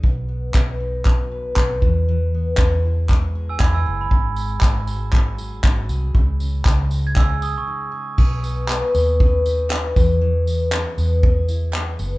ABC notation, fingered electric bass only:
X:1
M:4/4
L:1/16
Q:"Swing 16ths" 1/4=118
K:B
V:1 name="Fingered electric bass" clef=bass
B,,,4 B,,,8 B,,,2 E,,2- | E,,4 E,,8 E,,2 F,,,2 | G,,,4 G,,,8 G,,,2 ^B,,,2 | C,,4 C,,8 z4 |
B,,,4- B,,, z D,,8 E,,2- | E,,4- E,, z E,,8 F,,,2 |]